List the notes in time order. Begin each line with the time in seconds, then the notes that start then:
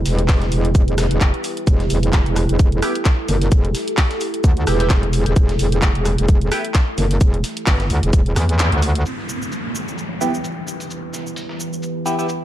Already playing: E4 G4 B4
0.05 E1, snare, open hi-hat, shaker
0.19 closed hi-hat
0.28 kick, snare, clap, closed hi-hat, open hi-hat
0.42 snare, closed hi-hat
0.52 E1, open hi-hat, shaker
0.65 closed hi-hat
0.75 E1, kick, closed hi-hat, shaker
0.88 closed hi-hat
0.98 cross-stick, snare, open hi-hat, shaker
1.11 E1, closed hi-hat
1.21 kick, clap, closed hi-hat, shaker
1.34 closed hi-hat
1.44 open hi-hat, shaker
1.57 closed hi-hat
1.67 E1 A4, kick, closed hi-hat, shaker
1.80 snare, closed hi-hat
1.90 E1, open hi-hat, shaker
2.03 closed hi-hat
2.13 kick, snare, clap, closed hi-hat, shaker
2.26 E1, closed hi-hat
2.36 cross-stick, open hi-hat, shaker
2.49 E1, closed hi-hat
2.59 kick, closed hi-hat, shaker
2.72 closed hi-hat
2.82 B3 E4 G4, cross-stick, open hi-hat, shaker
2.95 closed hi-hat
3.05 kick, snare, clap, closed hi-hat, shaker
3.28 F#1, open hi-hat, shaker
3.41 closed hi-hat
3.52 E1, kick, closed hi-hat, shaker
3.65 closed hi-hat
3.75 snare, open hi-hat, shaker
3.88 closed hi-hat
3.97 kick, snare, clap, closed hi-hat, open hi-hat
4.11 snare, closed hi-hat
4.21 open hi-hat, shaker
4.34 closed hi-hat
4.44 D2, kick, closed hi-hat, shaker
4.57 closed hi-hat
4.67 E1 B3 E4 G4, cross-stick, open hi-hat, shaker
4.80 B3 E4 G4, closed hi-hat
4.90 E1, kick, snare, clap, closed hi-hat, shaker
5.03 closed hi-hat
5.13 open hi-hat, shaker
5.26 E1, closed hi-hat
5.36 E1, kick, closed hi-hat, shaker
5.49 snare, closed hi-hat
5.59 E1, open hi-hat, shaker
5.72 closed hi-hat
5.82 kick, snare, clap, closed hi-hat, shaker
5.95 E1, closed hi-hat
6.05 cross-stick, open hi-hat, shaker
6.18 E1, closed hi-hat
6.28 kick, closed hi-hat, shaker
6.41 closed hi-hat
6.52 B3 E4 G4, cross-stick, open hi-hat, shaker
6.65 closed hi-hat
6.74 kick, snare, clap, closed hi-hat, shaker
6.98 F#1, open hi-hat, shaker
7.11 closed hi-hat
7.21 E1, kick, closed hi-hat, shaker
7.34 closed hi-hat
7.44 snare, open hi-hat, shaker
7.57 closed hi-hat
7.67 G1, kick, snare, clap, closed hi-hat, open hi-hat
7.80 snare, closed hi-hat
7.90 D2, open hi-hat, shaker
8.03 E1, closed hi-hat
8.13 E1, kick, closed hi-hat, shaker
8.26 closed hi-hat
8.36 E2, cross-stick, clap, open hi-hat, shaker
8.49 closed hi-hat
8.59 snare, clap, closed hi-hat, shaker
8.72 D2, closed hi-hat
8.82 open hi-hat, shaker
8.95 closed hi-hat
9.06 E3 E4 G4 B4, downlifter, cabasa, shaker
9.18 snare
9.29 cabasa, shaker
9.42 cabasa
9.52 cabasa, shaker
9.75 cabasa, shaker
9.88 cabasa
9.98 cabasa, shaker
10.21 B3 E4 G4, cabasa, shaker
10.34 cabasa
10.44 cabasa, shaker
10.67 cabasa, shaker
10.80 closed hi-hat, cabasa
10.90 cabasa, shaker
11.13 snare, cabasa, shaker
11.27 cabasa
11.36 open hi-hat, cabasa
11.49 snare
11.59 cabasa, shaker
11.73 cabasa
11.83 cabasa, shaker
12.06 B3 E4 G4, cabasa, shaker
12.18 B3 E4 G4, cabasa
12.29 cabasa, shaker